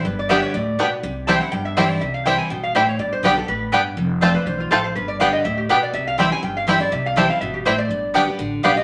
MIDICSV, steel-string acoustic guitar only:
0, 0, Header, 1, 2, 480
1, 0, Start_track
1, 0, Key_signature, 0, "major"
1, 0, Tempo, 245198
1, 110, Time_signature, 4, 2, 24, 8
1, 17299, End_track
2, 0, Start_track
2, 0, Title_t, "Steel-string acoustic guitar"
2, 0, Program_c, 0, 25
2, 96, Note_on_c, 0, 43, 96
2, 577, Note_on_c, 0, 50, 91
2, 588, Note_on_c, 0, 55, 88
2, 597, Note_on_c, 0, 59, 93
2, 613, Note_on_c, 0, 67, 98
2, 1017, Note_off_c, 0, 43, 0
2, 1040, Note_off_c, 0, 50, 0
2, 1046, Note_off_c, 0, 55, 0
2, 1050, Note_off_c, 0, 59, 0
2, 1058, Note_off_c, 0, 67, 0
2, 1058, Note_on_c, 0, 45, 96
2, 1520, Note_off_c, 0, 45, 0
2, 1545, Note_on_c, 0, 47, 85
2, 2004, Note_off_c, 0, 47, 0
2, 2024, Note_on_c, 0, 48, 93
2, 2498, Note_on_c, 0, 52, 95
2, 2512, Note_on_c, 0, 55, 94
2, 2524, Note_on_c, 0, 60, 90
2, 2534, Note_on_c, 0, 64, 104
2, 2733, Note_off_c, 0, 64, 0
2, 2749, Note_off_c, 0, 52, 0
2, 2756, Note_off_c, 0, 55, 0
2, 2756, Note_on_c, 0, 64, 62
2, 2762, Note_off_c, 0, 60, 0
2, 2793, Note_on_c, 0, 60, 50
2, 2941, Note_off_c, 0, 48, 0
2, 2970, Note_on_c, 0, 43, 105
2, 2974, Note_off_c, 0, 64, 0
2, 2992, Note_off_c, 0, 60, 0
2, 3459, Note_on_c, 0, 52, 93
2, 3476, Note_on_c, 0, 55, 97
2, 3484, Note_on_c, 0, 60, 96
2, 3499, Note_on_c, 0, 64, 98
2, 3893, Note_off_c, 0, 43, 0
2, 3920, Note_off_c, 0, 52, 0
2, 3928, Note_off_c, 0, 55, 0
2, 3933, Note_off_c, 0, 60, 0
2, 3940, Note_off_c, 0, 64, 0
2, 3944, Note_on_c, 0, 48, 91
2, 4413, Note_on_c, 0, 52, 86
2, 4426, Note_on_c, 0, 55, 98
2, 4439, Note_on_c, 0, 60, 94
2, 4453, Note_on_c, 0, 64, 94
2, 4860, Note_off_c, 0, 48, 0
2, 4877, Note_off_c, 0, 52, 0
2, 4883, Note_off_c, 0, 55, 0
2, 4890, Note_off_c, 0, 60, 0
2, 4897, Note_off_c, 0, 64, 0
2, 4899, Note_on_c, 0, 47, 94
2, 5360, Note_off_c, 0, 47, 0
2, 5377, Note_on_c, 0, 45, 88
2, 5838, Note_off_c, 0, 45, 0
2, 5853, Note_on_c, 0, 43, 91
2, 6320, Note_on_c, 0, 50, 92
2, 6339, Note_on_c, 0, 55, 91
2, 6349, Note_on_c, 0, 59, 98
2, 6357, Note_on_c, 0, 67, 101
2, 6566, Note_off_c, 0, 67, 0
2, 6579, Note_off_c, 0, 50, 0
2, 6589, Note_off_c, 0, 55, 0
2, 6590, Note_on_c, 0, 67, 61
2, 6594, Note_off_c, 0, 59, 0
2, 6627, Note_on_c, 0, 59, 57
2, 6774, Note_off_c, 0, 43, 0
2, 6810, Note_off_c, 0, 67, 0
2, 6815, Note_on_c, 0, 45, 90
2, 6829, Note_off_c, 0, 59, 0
2, 7278, Note_off_c, 0, 45, 0
2, 7292, Note_on_c, 0, 43, 91
2, 7756, Note_off_c, 0, 43, 0
2, 7770, Note_on_c, 0, 41, 93
2, 8251, Note_on_c, 0, 53, 86
2, 8267, Note_on_c, 0, 57, 89
2, 8277, Note_on_c, 0, 60, 93
2, 8285, Note_on_c, 0, 65, 101
2, 8479, Note_off_c, 0, 65, 0
2, 8503, Note_on_c, 0, 65, 66
2, 8505, Note_off_c, 0, 53, 0
2, 8512, Note_off_c, 0, 57, 0
2, 8517, Note_off_c, 0, 60, 0
2, 8537, Note_on_c, 0, 60, 54
2, 8693, Note_off_c, 0, 41, 0
2, 8726, Note_off_c, 0, 65, 0
2, 8743, Note_off_c, 0, 60, 0
2, 8744, Note_on_c, 0, 40, 99
2, 9202, Note_off_c, 0, 40, 0
2, 9226, Note_on_c, 0, 41, 91
2, 9683, Note_off_c, 0, 41, 0
2, 9715, Note_on_c, 0, 43, 87
2, 10179, Note_on_c, 0, 50, 88
2, 10194, Note_on_c, 0, 55, 95
2, 10210, Note_on_c, 0, 59, 99
2, 10218, Note_on_c, 0, 67, 107
2, 10625, Note_off_c, 0, 43, 0
2, 10640, Note_off_c, 0, 50, 0
2, 10647, Note_off_c, 0, 55, 0
2, 10655, Note_off_c, 0, 59, 0
2, 10659, Note_off_c, 0, 67, 0
2, 10669, Note_on_c, 0, 45, 95
2, 11125, Note_off_c, 0, 45, 0
2, 11145, Note_on_c, 0, 47, 93
2, 11603, Note_off_c, 0, 47, 0
2, 11618, Note_on_c, 0, 48, 86
2, 12093, Note_on_c, 0, 52, 89
2, 12111, Note_on_c, 0, 55, 97
2, 12118, Note_on_c, 0, 60, 92
2, 12129, Note_on_c, 0, 64, 103
2, 12326, Note_off_c, 0, 64, 0
2, 12346, Note_off_c, 0, 52, 0
2, 12350, Note_on_c, 0, 64, 69
2, 12355, Note_off_c, 0, 55, 0
2, 12359, Note_off_c, 0, 60, 0
2, 12390, Note_on_c, 0, 60, 59
2, 12538, Note_off_c, 0, 48, 0
2, 12571, Note_off_c, 0, 64, 0
2, 12580, Note_on_c, 0, 43, 93
2, 12591, Note_off_c, 0, 60, 0
2, 13052, Note_on_c, 0, 52, 85
2, 13066, Note_on_c, 0, 55, 103
2, 13078, Note_on_c, 0, 60, 91
2, 13089, Note_on_c, 0, 64, 99
2, 13288, Note_off_c, 0, 64, 0
2, 13306, Note_off_c, 0, 52, 0
2, 13311, Note_on_c, 0, 64, 62
2, 13313, Note_off_c, 0, 55, 0
2, 13319, Note_off_c, 0, 60, 0
2, 13349, Note_on_c, 0, 60, 54
2, 13499, Note_off_c, 0, 43, 0
2, 13532, Note_off_c, 0, 64, 0
2, 13545, Note_on_c, 0, 48, 90
2, 13551, Note_off_c, 0, 60, 0
2, 14013, Note_on_c, 0, 52, 93
2, 14030, Note_on_c, 0, 55, 93
2, 14042, Note_on_c, 0, 60, 97
2, 14055, Note_on_c, 0, 64, 93
2, 14258, Note_off_c, 0, 64, 0
2, 14267, Note_off_c, 0, 52, 0
2, 14276, Note_off_c, 0, 55, 0
2, 14281, Note_on_c, 0, 64, 67
2, 14282, Note_off_c, 0, 60, 0
2, 14315, Note_on_c, 0, 60, 53
2, 14463, Note_off_c, 0, 48, 0
2, 14497, Note_off_c, 0, 64, 0
2, 14514, Note_off_c, 0, 60, 0
2, 14515, Note_on_c, 0, 47, 93
2, 14970, Note_off_c, 0, 47, 0
2, 14991, Note_on_c, 0, 45, 90
2, 15448, Note_off_c, 0, 45, 0
2, 15475, Note_on_c, 0, 43, 91
2, 15941, Note_on_c, 0, 50, 91
2, 15960, Note_on_c, 0, 55, 95
2, 15973, Note_on_c, 0, 59, 92
2, 15980, Note_on_c, 0, 67, 98
2, 16173, Note_off_c, 0, 67, 0
2, 16192, Note_off_c, 0, 50, 0
2, 16196, Note_on_c, 0, 67, 67
2, 16202, Note_off_c, 0, 55, 0
2, 16208, Note_off_c, 0, 59, 0
2, 16232, Note_on_c, 0, 59, 52
2, 16389, Note_off_c, 0, 43, 0
2, 16416, Note_off_c, 0, 67, 0
2, 16421, Note_on_c, 0, 50, 103
2, 16434, Note_off_c, 0, 59, 0
2, 16871, Note_off_c, 0, 50, 0
2, 16894, Note_on_c, 0, 50, 90
2, 16906, Note_on_c, 0, 55, 94
2, 16920, Note_on_c, 0, 59, 94
2, 16928, Note_on_c, 0, 67, 105
2, 17126, Note_off_c, 0, 67, 0
2, 17150, Note_off_c, 0, 50, 0
2, 17150, Note_on_c, 0, 67, 70
2, 17155, Note_off_c, 0, 55, 0
2, 17163, Note_off_c, 0, 59, 0
2, 17185, Note_on_c, 0, 59, 51
2, 17299, Note_off_c, 0, 59, 0
2, 17299, Note_off_c, 0, 67, 0
2, 17299, End_track
0, 0, End_of_file